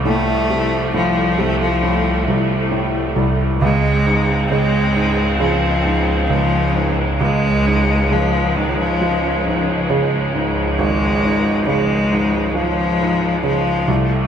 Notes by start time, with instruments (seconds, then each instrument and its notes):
Already playing: grand piano C2, string section C2 C3 F3 A3
0.05 grand piano A2, cello A3
0.50 grand piano C3
0.94 grand piano A2, cello F3
1.38 grand piano C3, cello A3
1.61 cello F3
1.83 grand piano A2
2.28 grand piano C2
2.71 grand piano A2
3.16 grand piano C2
3.62 grand piano C#2, string section C#2 C#3 G#3 C4, cello G#3
4.06 grand piano G#2
4.51 grand piano C#3, cello G#3
4.95 grand piano G#2
5.39 grand piano C#3, cello F3
5.85 grand piano G#2
6.30 grand piano C#2, cello F3
6.75 grand piano G#2
7.20 grand piano C#2, string section F3, cello G#3
7.66 grand piano G#2
8.10 grand piano C#3, cello F3
8.56 grand piano G#2, cello D#3
8.79 cello F3
9.01 grand piano F3
9.46 grand piano G#2
9.90 grand piano C#3
10.34 grand piano G#2
10.78 grand piano G#1, cello G#3
11.23 grand piano G#2
11.67 grand piano C#3, cello G#3
12.11 grand piano G#2
12.55 grand piano F3, cello F3
13.00 grand piano G#2
13.43 grand piano C#3, cello F3
13.87 string section C2 C3 A3, grand piano C2